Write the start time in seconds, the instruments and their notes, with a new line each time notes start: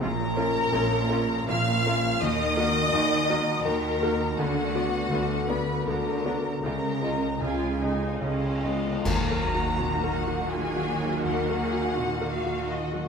Already playing: harp C#4 A#4 C#5 A#5
0.01 grand piano A#1 A#2, double bass section A#1, cello section A#2, harp A#2, viola section C#4 F4, violin section A#4 A#5
0.19 harp C#4
0.36 grand piano C#4 F4 A#4, viola section C#4 F4, harp F4
0.55 harp A#4
0.71 double bass section A#1, grand piano A#1 A#2, cello section A#2, viola section C#4 F4, harp C#5
0.92 harp F5
1.09 grand piano C#4 F4 A#4, viola section C#4 F4, harp A#5
1.30 harp F5
1.47 grand piano A#1 A#2, double bass section A#1, cello section A#2, viola section C#4 F4, harp A#4, violin section F5 F6
1.68 harp F4
1.86 grand piano C#4 F4 A#4, harp C#4, viola section C#4 F4
2.04 harp F3
2.21 double bass section D#2, grand piano D#2 D#3, cello section D#3, harp D#3, viola section A#3 F#4, violin section D#5 D#6
2.39 harp A#3
2.57 grand piano A#3 F#4 A#4, viola section A#3 F#4, harp F#4
2.75 harp A#4
2.92 double bass section D#2, grand piano D#2 D#3, cello section D#3, viola section A#3 F#4, harp F#4
3.11 harp F#5
3.29 viola section A#3 F#4, grand piano A#3 F#4 A#4, harp A#5
3.47 harp F#5
3.63 double bass section D#2, grand piano D#2 D#3, cello section D#3, viola section A#3 F#4, violin section A#4 A#5, harp A#4
3.83 harp F#4
4.01 harp A#3, grand piano A#3 F#4 A#4, viola section A#3 F#4
4.20 harp D#4
4.37 double bass section D2, grand piano D2 D3, harp D3, cello section D3, viola section B3 F#4, violin section F#4 F#5
4.56 harp B3
4.75 grand piano B3 F#4 D5, viola section B3 F#4, harp F#4
4.92 harp D5
5.11 grand piano D2 D3, double bass section D2, cello section D3, viola section B3 F#4
5.29 harp F#5
5.48 grand piano B3 F#4 D5, viola section B3 F#4, violin section B4 B5, harp D6
5.67 harp F#5
5.86 grand piano D2 D3, double bass section D2, cello section D3, viola section B3 F#4, violin section A#4 A#5, harp D5
6.05 harp F#4
6.25 harp B3, grand piano B3 F#4 D5, viola section B3 F#4
6.43 harp D4
6.63 grand piano C#2 C#3, double bass section C#2, harp C#3, cello section C#3, viola section D#4 F4, violin section A#4 A#5
6.82 harp G#3
7.02 grand piano G#3 F4 D#5, viola section D#4 F4, harp F4
7.23 harp D#5
7.41 double bass section C#2, grand piano C#2 C#3, cello section C#3, viola section F4, harp G#4, violin section G#4 G#5
7.62 harp F5
7.82 grand piano G#3 F4 D#5, viola section D#4, harp D#6
8.01 harp F5
8.20 double bass section C#2, grand piano C#2 C#3, cello section C#3, viola section C#4, violin section D#5, harp D#5
8.43 harp F4
8.64 grand piano G#3 F4 D#5, harp G#3, viola section B3
8.85 harp C#4
9.05 double bass section D#2, grand piano D#2, harp D#3, cello section D#3, viola section A#3 F#4, violin section A#5, concert bass drum, crash
9.31 harp F#3, grand piano A#4
9.55 grand piano F#4, harp F#4
9.78 grand piano A#2, violin section F#4, harp A#5
10.03 harp F#4, grand piano A#4
10.15 violin section F#5
10.27 grand piano F#4
10.51 grand piano F4, violin section G#4 G#5
10.76 harp F#3, grand piano F#4
11.00 grand piano F#3, harp D#4
11.24 grand piano D#2, harp D#3, violin section A#4 F#5
11.48 harp F#3, grand piano A#4
11.60 violin section G#4
11.73 harp F#4, grand piano F#4
11.95 grand piano A#2, violin section F#4
12.21 harp F#4, grand piano A#4
12.35 violin section F5
12.46 grand piano F#4
12.70 grand piano F4, violin section D#5
12.93 harp F#3, grand piano F#4